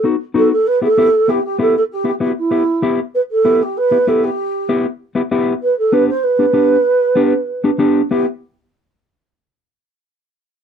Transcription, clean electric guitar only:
0.03 B3 D#4 F#4
0.34 B3 D#4 F#4
0.81 B3 E4 G4
0.97 B3 E4 G4
1.28 B3 E4 G4
1.58 B3 E4 G4
2.04 B3 E4 G4
2.20 B3 E4 G4
2.51 B3 E4 G4
2.82 B3 E4 G4
3.45 B3 E4 G4
3.91 B3 E4 G4
4.07 B3 E4 G4
4.69 B3 E4 G4
5.15 B3 E4 G4
5.31 B3 E4 G4
5.92 B3 D4 G4
6.39 B3 D4 G4
6.53 B3 D4 G4
7.15 B3 D4 G4
7.64 B3 D4 G4
7.79 B3 D4 G4
8.11 B3 E4 G4

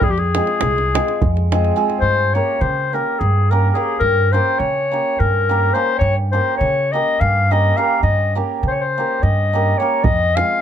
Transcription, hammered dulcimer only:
0.36 G#3 C4 F4 G#4
0.94 G#3 C4 F4 G#4
1.52 G#3 C4 F4 G#4
1.76 G#3 C4 F4 G#4
2.35 A#3 C#4 G4 A#4
2.93 A#3 C#4 G4 A#4
3.51 A#3 C#4 G4 A#4
3.75 A#3 C#4 G4 A#4
4.33 A#3 C#4 G4 A#4
4.91 A#3 C#4 G4 A#4
5.49 A#3 C#4 G4 A#4
5.74 A#3 C#4 G4 A#4
6.33 A#3 C#4 G4 A#4
6.93 A#3 C#4 G4 A#4
7.51 A#3 C#4 G4 A#4
7.77 A#3 C#4 G4 A#4
8.35 A#3 C#4 G4 A#4
8.98 A#3 C#4 G4 A#4
9.53 A#3 C#4 G4 A#4
9.80 A#3 C#4 G4 A#4
10.38 G#3 C4 F4 G#4

